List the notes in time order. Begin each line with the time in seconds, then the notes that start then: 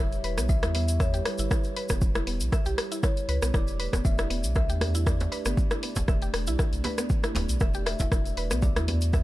Already playing: E1 G3 E4 G4 C#5
0.00 E5
0.12 closed hi-hat, shaker
0.24 E1 B4, open hi-hat
0.37 B1 B3, cross-stick, closed hi-hat, shaker
0.49 E5, kick, shaker
0.63 E2 E4, cross-stick, closed hi-hat, shaker
0.75 B3 E5, open hi-hat
0.88 closed hi-hat, shaker
1.00 C#5 E5, kick, cross-stick, shaker
1.14 G4, closed hi-hat, shaker
1.25 B4, cross-stick, open hi-hat
1.38 G1 E4, closed hi-hat, shaker
1.51 E4, kick, cross-stick, shaker
1.64 closed hi-hat, shaker
1.76 B4, open hi-hat
1.89 E1 B3, kick, cross-stick, closed hi-hat, shaker
2.01 kick, shaker
2.15 E4, cross-stick, closed hi-hat, shaker
2.27 E1 B3, open hi-hat
2.40 B1, closed hi-hat, shaker
2.52 E5, kick, cross-stick, shaker
2.65 B1 G4, closed hi-hat, shaker
2.78 cross-stick, open hi-hat
2.92 E4, closed hi-hat, shaker
3.03 E4 C#5, kick, cross-stick, shaker
3.17 closed hi-hat, shaker
3.29 C#2 B4, open hi-hat
3.42 B1 B3, cross-stick, closed hi-hat, shaker
3.54 E1 A3 D4 E4 G4 D5, kick, cross-stick, shaker
3.67 closed hi-hat, shaker
3.80 B4, open hi-hat
3.93 E1 B3, kick, cross-stick, closed hi-hat, djembe slap, shaker
4.05 E5, kick, shaker
4.18 E4, cross-stick, closed hi-hat, shaker
4.30 E1 B3, open hi-hat
4.44 B1, closed hi-hat, shaker
4.55 E5, kick, cross-stick, djembe tone, shaker
4.69 E2 G4, closed hi-hat, shaker
4.81 cross-stick, open hi-hat, djembe tone
4.95 E4, closed hi-hat, shaker
5.06 E4 D5, kick, cross-stick, djembe tone, shaker
5.20 closed hi-hat, djembe slap, shaker
5.32 B4 D5, open hi-hat
5.45 G1 B3, cross-stick, closed hi-hat, shaker
5.57 kick, shaker
5.71 E4, cross-stick, closed hi-hat, shaker
5.83 B3, open hi-hat
5.96 E1, kick, closed hi-hat, djembe slap, djembe tone, shaker
6.08 E5, kick, cross-stick, shaker
6.22 G4, closed hi-hat, shaker
6.34 E1, cross-stick, open hi-hat
6.47 B1 E4, closed hi-hat, shaker
6.59 E4, kick, cross-stick, shaker
6.73 B1, closed hi-hat, shaker
6.84 B4, open hi-hat, djembe slap, djembe tone
6.98 B3, cross-stick, closed hi-hat, shaker
7.10 kick, shaker
7.24 E4, cross-stick, closed hi-hat, shaker
7.35 D1 B3, open hi-hat, djembe slap, djembe tone
7.49 B1, closed hi-hat, shaker
7.60 E1 F#4 E5, kick, cross-stick, shaker
7.74 G4, closed hi-hat, shaker
7.86 E5, cross-stick, open hi-hat
7.99 E1 E4, kick, closed hi-hat, djembe slap, shaker
8.12 E4, kick, cross-stick, shaker
8.26 closed hi-hat, shaker
8.37 E1 B4, open hi-hat
8.51 B1 B3, cross-stick, closed hi-hat, shaker
8.62 D5, kick, djembe tone, shaker
8.76 E2 E4, cross-stick, closed hi-hat, shaker
8.88 B3, open hi-hat, djembe tone
9.01 closed hi-hat, shaker
9.13 E5, kick, cross-stick, djembe tone, shaker